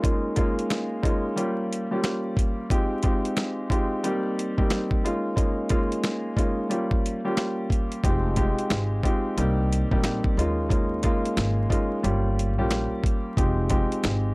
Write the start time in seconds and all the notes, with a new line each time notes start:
0.02 G#3 A#3 C#4 D#4 F4, kick, closed hi-hat
0.36 G#3 A#3 C#4 D#4 F4, kick, closed hi-hat
0.59 closed hi-hat
0.70 snare, closed hi-hat
1.03 G#3 A#3 C#4 D#4 F4, kick, closed hi-hat
1.36 G3 A#3 C#4 F4 G4, closed hi-hat
1.73 closed hi-hat
1.91 G3 A#3 C#4 F4 G4
2.04 snare, closed hi-hat
2.37 kick, closed hi-hat
2.70 G#3 C4 D#4 F4 G4, kick, closed hi-hat
3.03 G#3 C4 D#4 F4 G4, kick, closed hi-hat
3.25 closed hi-hat
3.37 snare, closed hi-hat
3.70 G#3 C4 D#4 F4 G4, kick, closed hi-hat
4.03 G3 A#3 C4 D#4 G4, closed hi-hat
4.39 closed hi-hat
4.57 G3 A#3 C4 D#4 G4, kick
4.70 snare, closed hi-hat
4.91 kick
5.04 G#3 A#3 C#4 D#4 F4, closed hi-hat
5.36 G#3 A#3 C#4 D#4 F4, kick, closed hi-hat
5.69 G#3 A#3 C#4 D#4 F4, kick, closed hi-hat
5.92 closed hi-hat
6.04 snare, closed hi-hat
6.36 G#3 A#3 C#4 D#4 F4, kick, closed hi-hat
6.69 G3 A#3 C#4 F4 G4, closed hi-hat
6.91 kick
7.06 closed hi-hat
7.24 G3 A#3 C#4 F4 G4
7.37 snare, closed hi-hat
7.70 kick, closed hi-hat
7.92 closed hi-hat
8.04 F1 G#3 C4 D#4 F4 G4, kick, closed hi-hat
8.36 G#3 C4 D#4 F4 G4, kick, closed hi-hat
8.59 closed hi-hat
8.70 G#1, snare, closed hi-hat
9.03 G#3 C4 D#4 F4 G4, kick, closed hi-hat
9.37 C2 G3 A#3 C4 D#4 G4, closed hi-hat
9.73 closed hi-hat
9.91 A#1 G3 A#3 C4 D#4 G4, kick
10.04 snare, closed hi-hat
10.24 kick
10.37 D#2 G#3 A#3 C#4 D#4 F4, closed hi-hat
10.69 G#3 A#3 C#4 D#4 F4, kick, closed hi-hat
11.03 G#3 A#3 C#4 D#4 F4, kick, closed hi-hat
11.25 closed hi-hat
11.37 G#1, snare, closed hi-hat
11.70 G#3 A#3 C#4 D#4 F4, kick, closed hi-hat
12.03 G1 G3 A#3 C#4 F4 G4, closed hi-hat
12.39 closed hi-hat
12.58 A#1 G3 A#3 C#4 F4 G4
12.71 snare, closed hi-hat
13.04 kick, closed hi-hat
13.37 F1 G#3 C4 D#4 F4 G4, kick, closed hi-hat
13.70 G#3 C4 D#4 F4 G4, kick, closed hi-hat
13.92 closed hi-hat
14.04 G#1, snare, closed hi-hat